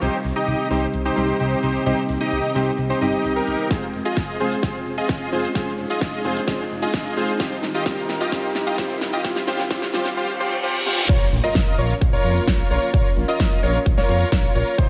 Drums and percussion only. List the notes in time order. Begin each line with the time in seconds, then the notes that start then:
0.01 closed hi-hat
0.13 closed hi-hat
0.24 open hi-hat
0.36 closed hi-hat
0.48 closed hi-hat
0.59 closed hi-hat
0.71 open hi-hat
0.82 closed hi-hat
0.94 closed hi-hat
1.05 closed hi-hat
1.17 open hi-hat
1.28 closed hi-hat
1.40 closed hi-hat
1.51 closed hi-hat
1.63 open hi-hat
1.74 closed hi-hat
1.86 closed hi-hat
1.98 closed hi-hat
2.09 open hi-hat
2.21 closed hi-hat
2.32 closed hi-hat
2.44 closed hi-hat
2.55 open hi-hat
2.67 closed hi-hat
2.78 closed hi-hat
2.90 open hi-hat
3.01 open hi-hat
3.13 closed hi-hat
3.24 closed hi-hat
3.36 closed hi-hat
3.47 open hi-hat
3.59 closed hi-hat
3.71 kick, snare, closed hi-hat, cabasa
3.82 closed hi-hat, cabasa
3.94 open hi-hat
4.05 closed hi-hat, cabasa
4.17 kick, snare, closed hi-hat, cabasa
4.28 closed hi-hat, cabasa
4.40 open hi-hat
4.51 closed hi-hat, cabasa
4.63 kick, snare, closed hi-hat, cabasa
4.74 closed hi-hat, cabasa
4.86 open hi-hat
4.98 closed hi-hat, cabasa
5.09 kick, snare, closed hi-hat, cabasa
5.21 closed hi-hat, cabasa
5.32 open hi-hat
5.44 closed hi-hat, cabasa
5.55 kick, snare, closed hi-hat, cabasa
5.67 closed hi-hat, cabasa
5.78 open hi-hat
5.90 closed hi-hat, cabasa
6.01 kick, snare, closed hi-hat, cabasa
6.13 closed hi-hat, cabasa
6.24 open hi-hat
6.36 closed hi-hat, cabasa
6.48 kick, snare, closed hi-hat, cabasa
6.59 closed hi-hat, cabasa
6.71 open hi-hat
6.82 closed hi-hat, cabasa
6.94 kick, snare, closed hi-hat, cabasa
7.05 closed hi-hat, cabasa
7.17 open hi-hat
7.28 closed hi-hat, cabasa
7.40 kick, snare, closed hi-hat, cabasa
7.51 closed hi-hat, cabasa
7.63 snare, open hi-hat
7.74 closed hi-hat, cabasa
7.86 kick, snare, closed hi-hat, cabasa
7.98 closed hi-hat, cabasa
8.09 snare, open hi-hat
8.21 closed hi-hat, cabasa
8.32 kick, snare, closed hi-hat, cabasa
8.44 closed hi-hat, cabasa
8.55 snare, open hi-hat
8.67 closed hi-hat, cabasa
8.78 kick, snare, closed hi-hat, cabasa
8.90 closed hi-hat, cabasa
9.01 snare, open hi-hat
9.13 closed hi-hat, cabasa
9.24 kick, snare, closed hi-hat, cabasa
9.36 snare, closed hi-hat, cabasa
9.47 snare, open hi-hat
9.59 snare, closed hi-hat, cabasa
9.71 kick, snare, closed hi-hat, cabasa
9.82 snare, closed hi-hat, cabasa
9.94 snare, open hi-hat
10.05 snare, closed hi-hat, cabasa
10.86 high tom
10.97 mid tom
11.09 kick, closed hi-hat, crash, cabasa
11.21 closed hi-hat, cabasa
11.32 open hi-hat
11.44 closed hi-hat, cabasa
11.55 kick, snare, closed hi-hat, cabasa
11.67 closed hi-hat, cabasa
11.78 open hi-hat
11.90 closed hi-hat, cabasa
12.01 kick, closed hi-hat, cabasa
12.13 closed hi-hat, cabasa
12.24 open hi-hat
12.36 closed hi-hat, cabasa
12.47 kick, snare, closed hi-hat, cabasa
12.59 closed hi-hat, cabasa
12.71 open hi-hat
12.82 closed hi-hat, cabasa
12.94 kick, closed hi-hat, cabasa
13.05 closed hi-hat, cabasa
13.17 open hi-hat
13.28 closed hi-hat, cabasa
13.40 kick, snare, closed hi-hat, cabasa
13.51 closed hi-hat, cabasa
13.63 open hi-hat
13.75 closed hi-hat, cabasa
13.86 kick, closed hi-hat, cabasa
13.98 snare, closed hi-hat, cabasa
14.09 open hi-hat
14.21 closed hi-hat, cabasa
14.32 kick, snare, closed hi-hat, cabasa
14.44 closed hi-hat, cabasa
14.55 open hi-hat
14.67 closed hi-hat, cabasa
14.78 kick, closed hi-hat, cabasa